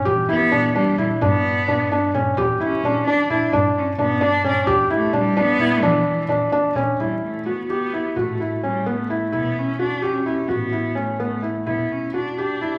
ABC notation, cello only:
X:1
M:5/8
L:1/16
Q:1/4=129
K:Edor
V:1 name="Cello"
z2 B,4 G,2 G,2 | B,8 z2 | z2 C4 D2 D2 | z2 C2 B,2 D2 D2 |
z2 A,2 G,2 B,4 | E,8 z2 | G,2 A,2 B,2 B,4 | A,4 G,2 A,4 |
B,2 C2 D2 C2 C2 | B,4 A,2 A,3 z | B,2 C2 D2 D4 |]